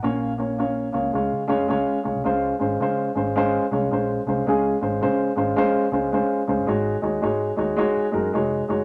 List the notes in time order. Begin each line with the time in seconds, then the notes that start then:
Already playing: F#5
0.03 A#1 A#3 C#4 F4 C#5
0.38 A#3 C#4 F4 C#5
0.58 A#3 C#4 F4 C#5
0.92 C#2 A#3 C#4 F4 C#5
1.13 C#2 G#3 C#4 F4 C#5
1.33 C#3
1.48 C#2 G#3 C#4 F4 C#5
1.60 F2
1.68 C#2 G#3 C#4 F4 C#5
2.03 C#2 G#3 C#4 F4 C#5
2.15 C2
2.24 C#2 G#3 C#4 F4 C5
2.59 G#1 G#3 C#4 F4 C5
2.80 C#3 G#3 C#4 F4 C5
3.15 G#1 G#3 C#4 F4 C5
3.36 G#3 C#4 F4 C5
3.71 C2 G#3 C#4 F4 C#5
3.91 A#1 G#3 C#4 F4 C5
4.26 C2 G#3 C#4 F4 C5
4.47 C#2 G#3 C#4 F4 G#4
4.81 G#1 G#3 C#4 F4 C5
5.01 C#3 G#3 C#4 F4 C5
5.36 G#1 G#3 C#4 F4 C5
5.56 G#3 C#4 F4 C5
5.75 muted fingered electric bass stroke
5.92 C#2 G#3 C#4 F4 C5
6.12 G#3 C#4 F4 C5
6.47 C#2 G#3 C#4 F4 C5
6.58 F#1
6.67 G#1 G#3 D#4 F#4 C#5
7.02 D#2 G#3 D#4 F#4 C#5
7.22 G#2 G#3 D#4 F#4 C#5
7.56 D#2 G#3 D#4 F#4 C#5
7.76 G#3 D#4 F#4 C#5
7.97 muted fingered electric bass stroke
8.11 F#2 G#3 D#4 F#4 A#4
8.33 F1 G#3 D#4 F#4 C#5
8.68 F#1 G#3 D#4 F#4 C#5